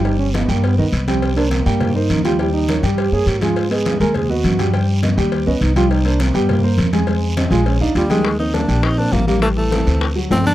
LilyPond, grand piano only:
\new Staff \with { instrumentName = "Grand piano" } { \time 4/4 \key ees \major \tempo 4 = 205 <g g' g''>4 <b b' dis''>8 <g g' g''>4 <b b' dis''>4 <g g' g''>8~ | <g g' g''>8 <bes bes' c''>4 <g g' g''>4 <bes bes' c''>4 <g g' g''>8 | <g g' g''>4 <bes bes' des''>8 <g g' g''>4 <bes bes' des''>4 <aes aes' aes''>8~ | <aes aes' aes''>8 <ces' ces'' ees''>4 <aes aes' aes''>4 <ces' ces'' ees''>4 <g g' g''>8 |
<g g' g''>4 <b b' dis''>8 <g g' g''>4 <b b' dis''>4 <g g' g''>8~ | <g g' g''>8 <bes bes' c''>4 <g g' g''>4 <bes bes' c''>4 <aes aes' aes''>8 | <aes aes' aes''>4 <c' c'' ees''>8 <aes aes' aes''>4 <d' d'' f''>4 <g g' g''>8 | r8 <bes bes'>4 <g' g''>4 <c' c''>4 <g g'>8 |
<g g'>4 <c' c''>8 <c' c''>4 <fis fis'>8 <a a'>8 <d' d''>8 | }